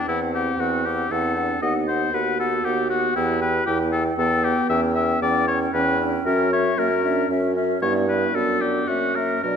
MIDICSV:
0, 0, Header, 1, 6, 480
1, 0, Start_track
1, 0, Tempo, 516351
1, 70, Time_signature, 3, 2, 24, 8
1, 7270, Tempo, 541028
1, 8818, End_track
2, 0, Start_track
2, 0, Title_t, "Flute"
2, 0, Program_c, 0, 73
2, 77, Note_on_c, 0, 78, 38
2, 309, Note_off_c, 0, 78, 0
2, 318, Note_on_c, 0, 78, 33
2, 548, Note_off_c, 0, 78, 0
2, 554, Note_on_c, 0, 78, 35
2, 784, Note_off_c, 0, 78, 0
2, 790, Note_on_c, 0, 78, 36
2, 1024, Note_off_c, 0, 78, 0
2, 1039, Note_on_c, 0, 78, 38
2, 1261, Note_off_c, 0, 78, 0
2, 1267, Note_on_c, 0, 78, 35
2, 1500, Note_off_c, 0, 78, 0
2, 1504, Note_on_c, 0, 78, 42
2, 1730, Note_off_c, 0, 78, 0
2, 1736, Note_on_c, 0, 78, 38
2, 1974, Note_off_c, 0, 78, 0
2, 1981, Note_on_c, 0, 78, 39
2, 2217, Note_off_c, 0, 78, 0
2, 2227, Note_on_c, 0, 78, 41
2, 2453, Note_off_c, 0, 78, 0
2, 2458, Note_on_c, 0, 78, 39
2, 2684, Note_off_c, 0, 78, 0
2, 2690, Note_on_c, 0, 78, 43
2, 2921, Note_off_c, 0, 78, 0
2, 2927, Note_on_c, 0, 79, 46
2, 3160, Note_off_c, 0, 79, 0
2, 3165, Note_on_c, 0, 79, 41
2, 3396, Note_off_c, 0, 79, 0
2, 3402, Note_on_c, 0, 79, 45
2, 3634, Note_off_c, 0, 79, 0
2, 3640, Note_on_c, 0, 79, 46
2, 3877, Note_off_c, 0, 79, 0
2, 3883, Note_on_c, 0, 79, 46
2, 4120, Note_off_c, 0, 79, 0
2, 4127, Note_on_c, 0, 79, 47
2, 4361, Note_off_c, 0, 79, 0
2, 4367, Note_on_c, 0, 79, 51
2, 4601, Note_off_c, 0, 79, 0
2, 4607, Note_on_c, 0, 79, 49
2, 4847, Note_off_c, 0, 79, 0
2, 4858, Note_on_c, 0, 79, 52
2, 5095, Note_off_c, 0, 79, 0
2, 5100, Note_on_c, 0, 79, 49
2, 5331, Note_off_c, 0, 79, 0
2, 5336, Note_on_c, 0, 79, 47
2, 5572, Note_off_c, 0, 79, 0
2, 5584, Note_on_c, 0, 79, 49
2, 5814, Note_off_c, 0, 79, 0
2, 5819, Note_on_c, 0, 76, 53
2, 6057, Note_off_c, 0, 76, 0
2, 6067, Note_on_c, 0, 76, 46
2, 6295, Note_off_c, 0, 76, 0
2, 6301, Note_on_c, 0, 76, 52
2, 6538, Note_off_c, 0, 76, 0
2, 6543, Note_on_c, 0, 76, 48
2, 6780, Note_off_c, 0, 76, 0
2, 6792, Note_on_c, 0, 76, 48
2, 7019, Note_off_c, 0, 76, 0
2, 7024, Note_on_c, 0, 76, 48
2, 7259, Note_off_c, 0, 76, 0
2, 7265, Note_on_c, 0, 74, 49
2, 7494, Note_off_c, 0, 74, 0
2, 7505, Note_on_c, 0, 74, 43
2, 7733, Note_off_c, 0, 74, 0
2, 7743, Note_on_c, 0, 74, 44
2, 7965, Note_off_c, 0, 74, 0
2, 7970, Note_on_c, 0, 74, 41
2, 8204, Note_off_c, 0, 74, 0
2, 8209, Note_on_c, 0, 76, 38
2, 8450, Note_off_c, 0, 76, 0
2, 8459, Note_on_c, 0, 76, 36
2, 8701, Note_off_c, 0, 76, 0
2, 8710, Note_on_c, 0, 74, 38
2, 8818, Note_off_c, 0, 74, 0
2, 8818, End_track
3, 0, Start_track
3, 0, Title_t, "Oboe"
3, 0, Program_c, 1, 68
3, 78, Note_on_c, 1, 64, 53
3, 185, Note_off_c, 1, 64, 0
3, 318, Note_on_c, 1, 67, 50
3, 561, Note_on_c, 1, 66, 45
3, 575, Note_off_c, 1, 67, 0
3, 797, Note_on_c, 1, 67, 51
3, 811, Note_off_c, 1, 66, 0
3, 1037, Note_on_c, 1, 69, 59
3, 1051, Note_off_c, 1, 67, 0
3, 1502, Note_off_c, 1, 69, 0
3, 1507, Note_on_c, 1, 75, 61
3, 1614, Note_off_c, 1, 75, 0
3, 1746, Note_on_c, 1, 72, 53
3, 1990, Note_on_c, 1, 71, 52
3, 2004, Note_off_c, 1, 72, 0
3, 2218, Note_off_c, 1, 71, 0
3, 2224, Note_on_c, 1, 69, 57
3, 2460, Note_on_c, 1, 67, 59
3, 2474, Note_off_c, 1, 69, 0
3, 2690, Note_off_c, 1, 67, 0
3, 2696, Note_on_c, 1, 66, 58
3, 2929, Note_off_c, 1, 66, 0
3, 2935, Note_on_c, 1, 64, 62
3, 3170, Note_off_c, 1, 64, 0
3, 3174, Note_on_c, 1, 71, 59
3, 3399, Note_off_c, 1, 71, 0
3, 3404, Note_on_c, 1, 67, 62
3, 3513, Note_off_c, 1, 67, 0
3, 3644, Note_on_c, 1, 69, 64
3, 3753, Note_off_c, 1, 69, 0
3, 3890, Note_on_c, 1, 69, 72
3, 4129, Note_on_c, 1, 67, 59
3, 4143, Note_off_c, 1, 69, 0
3, 4357, Note_off_c, 1, 67, 0
3, 4362, Note_on_c, 1, 76, 74
3, 4472, Note_off_c, 1, 76, 0
3, 4601, Note_on_c, 1, 76, 69
3, 4844, Note_off_c, 1, 76, 0
3, 4853, Note_on_c, 1, 74, 74
3, 5084, Note_off_c, 1, 74, 0
3, 5090, Note_on_c, 1, 73, 72
3, 5200, Note_off_c, 1, 73, 0
3, 5332, Note_on_c, 1, 71, 77
3, 5640, Note_off_c, 1, 71, 0
3, 5815, Note_on_c, 1, 70, 76
3, 6042, Note_off_c, 1, 70, 0
3, 6066, Note_on_c, 1, 73, 65
3, 6308, Note_on_c, 1, 70, 67
3, 6322, Note_off_c, 1, 73, 0
3, 6787, Note_off_c, 1, 70, 0
3, 7269, Note_on_c, 1, 73, 78
3, 7373, Note_off_c, 1, 73, 0
3, 7503, Note_on_c, 1, 71, 55
3, 7739, Note_on_c, 1, 69, 64
3, 7752, Note_off_c, 1, 71, 0
3, 7973, Note_on_c, 1, 67, 56
3, 7986, Note_off_c, 1, 69, 0
3, 8209, Note_on_c, 1, 66, 53
3, 8222, Note_off_c, 1, 67, 0
3, 8452, Note_on_c, 1, 70, 52
3, 8466, Note_off_c, 1, 66, 0
3, 8693, Note_off_c, 1, 70, 0
3, 8698, Note_on_c, 1, 70, 57
3, 8818, Note_off_c, 1, 70, 0
3, 8818, End_track
4, 0, Start_track
4, 0, Title_t, "French horn"
4, 0, Program_c, 2, 60
4, 75, Note_on_c, 2, 60, 46
4, 1029, Note_on_c, 2, 64, 43
4, 1043, Note_off_c, 2, 60, 0
4, 1267, Note_on_c, 2, 62, 42
4, 1281, Note_off_c, 2, 64, 0
4, 1499, Note_off_c, 2, 62, 0
4, 1505, Note_on_c, 2, 63, 50
4, 1974, Note_off_c, 2, 63, 0
4, 1978, Note_on_c, 2, 66, 52
4, 2938, Note_on_c, 2, 67, 54
4, 2952, Note_off_c, 2, 66, 0
4, 3411, Note_on_c, 2, 64, 52
4, 3425, Note_off_c, 2, 67, 0
4, 3879, Note_off_c, 2, 64, 0
4, 3885, Note_on_c, 2, 59, 55
4, 5055, Note_off_c, 2, 59, 0
4, 5338, Note_on_c, 2, 61, 55
4, 5561, Note_off_c, 2, 61, 0
4, 5573, Note_on_c, 2, 62, 55
4, 5683, Note_off_c, 2, 62, 0
4, 5818, Note_on_c, 2, 61, 60
4, 6293, Note_off_c, 2, 61, 0
4, 6306, Note_on_c, 2, 58, 53
4, 6414, Note_off_c, 2, 58, 0
4, 6546, Note_on_c, 2, 62, 55
4, 6786, Note_on_c, 2, 61, 47
4, 6800, Note_off_c, 2, 62, 0
4, 7262, Note_off_c, 2, 61, 0
4, 7268, Note_on_c, 2, 64, 61
4, 7739, Note_on_c, 2, 62, 48
4, 7753, Note_off_c, 2, 64, 0
4, 8214, Note_on_c, 2, 61, 46
4, 8227, Note_off_c, 2, 62, 0
4, 8707, Note_on_c, 2, 62, 41
4, 8720, Note_off_c, 2, 61, 0
4, 8818, Note_off_c, 2, 62, 0
4, 8818, End_track
5, 0, Start_track
5, 0, Title_t, "Clarinet"
5, 0, Program_c, 3, 71
5, 72, Note_on_c, 3, 60, 39
5, 306, Note_off_c, 3, 60, 0
5, 313, Note_on_c, 3, 60, 33
5, 548, Note_off_c, 3, 60, 0
5, 558, Note_on_c, 3, 60, 37
5, 790, Note_off_c, 3, 60, 0
5, 801, Note_on_c, 3, 60, 34
5, 1030, Note_off_c, 3, 60, 0
5, 1036, Note_on_c, 3, 60, 36
5, 1262, Note_off_c, 3, 60, 0
5, 1268, Note_on_c, 3, 60, 35
5, 1500, Note_off_c, 3, 60, 0
5, 1504, Note_on_c, 3, 59, 42
5, 1738, Note_off_c, 3, 59, 0
5, 1742, Note_on_c, 3, 59, 34
5, 1978, Note_off_c, 3, 59, 0
5, 1984, Note_on_c, 3, 59, 39
5, 2219, Note_off_c, 3, 59, 0
5, 2225, Note_on_c, 3, 59, 36
5, 2458, Note_off_c, 3, 59, 0
5, 2462, Note_on_c, 3, 59, 40
5, 2695, Note_off_c, 3, 59, 0
5, 2699, Note_on_c, 3, 59, 42
5, 2931, Note_off_c, 3, 59, 0
5, 2937, Note_on_c, 3, 59, 45
5, 3171, Note_off_c, 3, 59, 0
5, 3176, Note_on_c, 3, 59, 38
5, 3408, Note_off_c, 3, 59, 0
5, 3417, Note_on_c, 3, 59, 45
5, 3645, Note_off_c, 3, 59, 0
5, 3651, Note_on_c, 3, 59, 37
5, 3885, Note_off_c, 3, 59, 0
5, 3890, Note_on_c, 3, 59, 42
5, 4124, Note_off_c, 3, 59, 0
5, 4128, Note_on_c, 3, 59, 44
5, 4362, Note_off_c, 3, 59, 0
5, 4370, Note_on_c, 3, 61, 49
5, 4601, Note_off_c, 3, 61, 0
5, 4606, Note_on_c, 3, 61, 42
5, 4847, Note_off_c, 3, 61, 0
5, 4853, Note_on_c, 3, 61, 49
5, 5089, Note_off_c, 3, 61, 0
5, 5094, Note_on_c, 3, 61, 46
5, 5331, Note_off_c, 3, 61, 0
5, 5336, Note_on_c, 3, 61, 46
5, 5572, Note_off_c, 3, 61, 0
5, 5581, Note_on_c, 3, 61, 46
5, 5816, Note_off_c, 3, 61, 0
5, 5822, Note_on_c, 3, 61, 54
5, 6058, Note_off_c, 3, 61, 0
5, 6068, Note_on_c, 3, 61, 41
5, 6302, Note_off_c, 3, 61, 0
5, 6309, Note_on_c, 3, 61, 48
5, 6542, Note_off_c, 3, 61, 0
5, 6549, Note_on_c, 3, 61, 43
5, 6783, Note_off_c, 3, 61, 0
5, 6788, Note_on_c, 3, 61, 46
5, 7023, Note_off_c, 3, 61, 0
5, 7031, Note_on_c, 3, 61, 44
5, 7266, Note_off_c, 3, 61, 0
5, 7273, Note_on_c, 3, 59, 48
5, 7498, Note_off_c, 3, 59, 0
5, 7506, Note_on_c, 3, 59, 39
5, 7731, Note_off_c, 3, 59, 0
5, 7737, Note_on_c, 3, 59, 43
5, 7968, Note_off_c, 3, 59, 0
5, 7974, Note_on_c, 3, 59, 36
5, 8204, Note_off_c, 3, 59, 0
5, 8210, Note_on_c, 3, 58, 38
5, 8446, Note_off_c, 3, 58, 0
5, 8451, Note_on_c, 3, 58, 36
5, 8691, Note_off_c, 3, 58, 0
5, 8696, Note_on_c, 3, 54, 36
5, 8818, Note_off_c, 3, 54, 0
5, 8818, End_track
6, 0, Start_track
6, 0, Title_t, "Bassoon"
6, 0, Program_c, 4, 70
6, 70, Note_on_c, 4, 40, 45
6, 494, Note_off_c, 4, 40, 0
6, 545, Note_on_c, 4, 40, 40
6, 971, Note_off_c, 4, 40, 0
6, 1029, Note_on_c, 4, 40, 45
6, 1448, Note_off_c, 4, 40, 0
6, 1508, Note_on_c, 4, 39, 48
6, 1928, Note_off_c, 4, 39, 0
6, 1986, Note_on_c, 4, 39, 44
6, 2407, Note_off_c, 4, 39, 0
6, 2464, Note_on_c, 4, 39, 50
6, 2883, Note_off_c, 4, 39, 0
6, 2941, Note_on_c, 4, 40, 52
6, 3360, Note_off_c, 4, 40, 0
6, 3414, Note_on_c, 4, 40, 51
6, 3833, Note_off_c, 4, 40, 0
6, 3888, Note_on_c, 4, 40, 52
6, 4238, Note_off_c, 4, 40, 0
6, 4364, Note_on_c, 4, 40, 57
6, 4794, Note_off_c, 4, 40, 0
6, 4848, Note_on_c, 4, 40, 52
6, 5278, Note_off_c, 4, 40, 0
6, 5333, Note_on_c, 4, 40, 54
6, 5760, Note_off_c, 4, 40, 0
6, 5817, Note_on_c, 4, 42, 65
6, 6245, Note_off_c, 4, 42, 0
6, 6302, Note_on_c, 4, 42, 55
6, 6727, Note_off_c, 4, 42, 0
6, 6783, Note_on_c, 4, 42, 57
6, 7211, Note_off_c, 4, 42, 0
6, 7268, Note_on_c, 4, 43, 59
6, 7680, Note_off_c, 4, 43, 0
6, 7734, Note_on_c, 4, 42, 48
6, 8155, Note_off_c, 4, 42, 0
6, 8210, Note_on_c, 4, 42, 44
6, 8645, Note_off_c, 4, 42, 0
6, 8704, Note_on_c, 4, 47, 44
6, 8818, Note_off_c, 4, 47, 0
6, 8818, End_track
0, 0, End_of_file